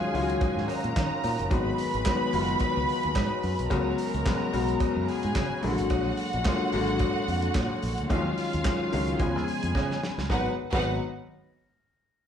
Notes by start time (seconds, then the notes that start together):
Already playing: D#3 F#3 G#3 C#4 F4 G#4 F5 G#5
0.13 C#2 D#3 F#3 G#3 C#4 F4, open hi-hat
0.21 F#4
0.30 closed hi-hat
0.41 kick, closed hi-hat, cowbell
0.57 G#2, snare
0.68 A#4 A#5, open hi-hat, cowbell
0.84 A#2, closed hi-hat
0.96 D#3, kick, snare, clap, closed hi-hat, cowbell
1.24 A#2, open hi-hat, cowbell
1.39 F#1, closed hi-hat
1.50 G#1 D#3 F#3 G#3 B3 F#4 B4 B5, kick, closed hi-hat, cowbell
1.78 open hi-hat
1.94 G#1, closed hi-hat
2.05 D#3 F#3 G#3 B3 F#4, kick, snare, clap, closed hi-hat, cowbell
2.33 F#1 D#3 F#3 G#3 B3 F4, open hi-hat
2.41 F#4
2.48 closed hi-hat
2.60 kick, closed hi-hat, cowbell
2.77 C#2
2.89 open hi-hat
3.03 D#2, closed hi-hat
3.15 G#2, kick, snare, clap, closed hi-hat, cowbell
3.43 F#2, open hi-hat
3.59 B1, closed hi-hat
3.70 C#2 C#3 F#3 G#3 B3 F#4 A#4 A#5, kick, closed hi-hat, cowbell
3.98 open hi-hat
4.14 C#2, closed hi-hat
4.25 C#3 F#3 G#3 B3 F#4, kick, snare, clap, closed hi-hat, cowbell
4.53 B1 C#3 F#3 G#3 B3 F#4, open hi-hat
4.68 closed hi-hat
4.80 kick, closed hi-hat, cowbell
4.96 F#2
5.08 G#4 G#5, open hi-hat
5.23 G#2, closed hi-hat
5.35 C#3, kick, snare, clap, closed hi-hat, cowbell
5.62 A#1 D3 F#3 G#3 A#3 E4 F#4 F#5, open hi-hat
5.70 F#4
5.78 G#1, closed hi-hat
5.90 A#1, kick, closed hi-hat, cowbell
6.17 open hi-hat
6.33 A#1, closed hi-hat
6.45 D3 F#3 G#3 A#3 F4, kick, snare, clap, closed hi-hat, cowbell
6.72 G#1 D3 F#3 G#3 A#3 F#4, open hi-hat
6.87 closed hi-hat
6.99 kick, closed hi-hat, cowbell
7.28 F2, open hi-hat
7.42 closed hi-hat
7.54 A#2, kick, snare, clap, closed hi-hat, cowbell
7.83 A#1, open hi-hat
7.98 D2, closed hi-hat
8.09 D#2 D#3 F3 G#3 C#4 F4 G#4 F5, kick, closed hi-hat, cowbell
8.16 F#3
8.38 open hi-hat
8.53 D#2, closed hi-hat
8.64 D#3 F#3 G#3 C#4 F4, kick, snare, clap, closed hi-hat, cowbell
8.92 C#2 D#3 F#3 G#3 C#4 F4, open hi-hat
9.08 closed hi-hat
9.19 C#2 C#3 F3 G#3 B3 F4 G#4 G#5, kick, closed hi-hat, cowbell
9.36 D#2, snare
9.48 open hi-hat
9.63 F2, closed hi-hat
9.75 C#3, kick, snare, cowbell
9.91 snare
10.03 snare
10.18 C#2, snare
10.29 G#1 D#3 F#3 G#3 B3 D#4 F#4 G#4 B4 F#5, kick, snare, cowbell
10.72 G#1 D#3 F#3 G#3 B3 D#4 F#4 B4 F#5, kick, crash, cowbell